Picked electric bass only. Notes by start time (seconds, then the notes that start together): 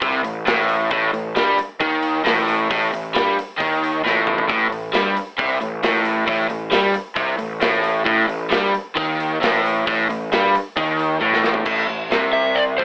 0.02 C2
0.25 A1
0.47 A1
0.91 A1
1.13 A1
1.38 G2
1.58 muted picked electric bass stroke
1.80 D#2
2.25 A1
2.70 A1
2.93 A1
3.17 G2
3.39 muted picked electric bass stroke
3.60 D#2
4.05 A1
4.50 A1
4.72 A1
4.96 G2
5.18 muted picked electric bass stroke
5.39 C2
5.62 A1
5.83 A1
6.28 A1
6.51 A1
6.72 G2
6.95 muted picked electric bass stroke
7.16 C2
7.41 A1
7.62 A1
8.06 A1
8.29 A1
8.52 G2
8.73 muted picked electric bass stroke
8.97 D#2
9.41 A1
9.87 A1
10.09 A1
10.32 G2
10.55 muted picked electric bass stroke
10.76 D#2
11.21 A1
11.66 A1
11.89 A1
12.10 C2
12.79 A1